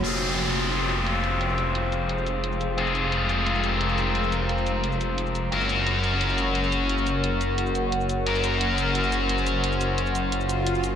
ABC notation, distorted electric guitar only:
X:1
M:4/4
L:1/8
Q:1/4=175
K:Fphr
V:1 name="Distorted electric guitar"
[CFA]8- | [CFA]8 | [CFA]8- | [CFA]8 |
[DGB]8- | [DGB]8 | [DGB]8- | [DGB]8 |]